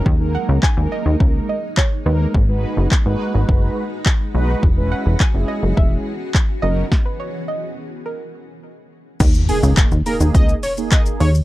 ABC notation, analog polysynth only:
X:1
M:4/4
L:1/16
Q:1/4=105
K:D#phr
V:1 name="Analog polysynth"
z [G,A,DA]3 z [G,A,DA]4- [G,A,DA] z4 [G,A,DA]2 | z [G,DFB]3 z [G,DFB]4- [G,DFB] z4 [G,DFB]2 | z [G,CEB]3 z [G,CEG]4- [G,CEG] z4 [F,CDA]2 | z16 |
z2 [A,DG]3 z [A,DG]3 z2 [A,DG]3 z2 |]